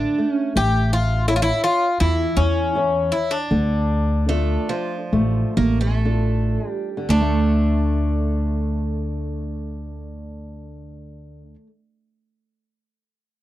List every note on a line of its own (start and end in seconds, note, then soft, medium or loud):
0.00 0.18 D3 soft
0.00 0.31 D4 medium
0.18 0.54 A3 soft
0.31 0.52 C#4 medium
0.55 1.50 A1 medium
0.55 1.26 A3 medium
0.55 0.93 G4 loud
0.93 1.28 F4 medium
1.28 1.36 E4 medium
1.28 1.86 A4 soft
1.28 1.86 C#5 soft
1.28 1.86 E5 soft
1.36 1.42 F4 medium
1.42 1.63 E4 medium
1.64 2.00 F4 medium
2.00 2.25 E2 medium
2.00 2.73 E3 medium
2.00 2.38 E4 medium
2.37 3.10 E2 loud
2.37 3.14 C#4 medium
2.75 3.35 E4 soft
2.75 3.35 A4 soft
2.75 3.36 C#5 soft
3.12 3.31 E4 medium
3.31 6.01 D4 medium
3.51 4.56 D2 medium
3.51 4.26 D3 medium
4.28 4.71 A3 medium
4.28 4.96 D4 soft
4.28 4.96 F4 soft
4.28 4.96 A4 medium
4.69 5.53 F3 medium
5.13 5.42 A1 medium
5.13 6.02 A3 medium
5.57 6.56 A1 medium
5.57 5.79 A#3 loud
5.81 6.70 A3 medium
6.05 6.88 D4 soft
6.05 6.88 F4 soft
6.05 6.89 A4 medium
6.70 7.05 G3 medium
6.97 11.42 D3 medium
7.09 11.54 D2 medium
7.09 11.54 A3 medium
7.09 11.55 D4 medium
7.21 11.66 A3 medium